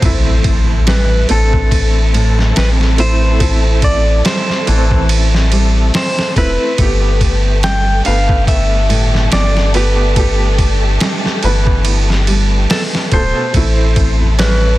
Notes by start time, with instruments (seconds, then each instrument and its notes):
Already playing: electric slide guitar C5
0.01 sub bass A1, upright piano A3 C4, nylon-string guitar A3, violin section A3 C4 E4 A4, kick, ride, impact
0.05 upright piano E4
0.44 kick, ride
0.87 nylon-string guitar G3, electric slide guitar B4, snare, ride
1.29 sub bass A1, upright piano A3 C4 A4, nylon-string guitar D4, electric slide guitar A4, ride
1.53 kick
1.71 kick, ride
2.14 nylon-string guitar A2, ride
2.39 snare
2.55 sub bass A1, nylon-string guitar C4, electric slide guitar B4, snare, ride
2.81 snare
2.98 upright piano A3 C4 E4, electric slide guitar C5, ride
3.39 upright piano A3 C4 E4, nylon-string guitar A4, kick, ride
3.82 electric slide guitar D5, kick, ride
4.24 nylon-string guitar G3, electric slide guitar C5, snare, ride
4.49 snare
4.67 sub bass A1, nylon-string guitar E3, upright piano A3 C4 A4, ride
4.91 kick
5.09 ride
5.34 snare
5.52 nylon-string guitar G3, ride
5.94 nylon-string guitar C4, electric slide guitar C5, snare, open hi-hat
6.19 snare
6.36 sub bass E1, upright piano A3 C4 E4, electric slide guitar B4, kick, ride
6.78 sub bass G1, upright piano A3 B3, nylon-string guitar A3, violin section D4 G4 A4, kick, ride
6.82 upright piano G4
7.21 kick, ride
7.63 nylon-string guitar G3, electric slide guitar G5, snare, ride
8.05 sub bass G1, upright piano A3 B3 B4, nylon-string guitar D4, electric slide guitar F5, ride
8.29 kick
8.47 electric slide guitar E5, kick, ride
8.89 nylon-string guitar A2, ride
9.15 snare
9.32 sub bass G1, nylon-string guitar B3, electric slide guitar D5, snare, ride
9.57 snare
9.74 upright piano A3 B3 G4, electric slide guitar B4, ride
10.16 upright piano A3 B3 G4, nylon-string guitar A4, kick, ride
10.58 kick, ride
11.00 nylon-string guitar G3, snare, ride
11.26 snare
11.43 sub bass G1, nylon-string guitar E3, upright piano A3 B3 B4, ride
11.67 kick
11.85 ride
12.10 snare
12.27 nylon-string guitar G3, ride
12.70 nylon-string guitar B3, electric slide guitar A4, snare, open hi-hat
12.95 snare
13.12 sub bass D1, upright piano B2 A3 A4, electric slide guitar C5, kick, ride
13.53 sub bass A1, upright piano A3 C4 E4, nylon-string guitar A3, violin section C4 E4 A4, kick, ride
13.96 kick, ride
14.21 tabla ge
14.39 nylon-string guitar G3, electric slide guitar B4, snare, ride, tabla na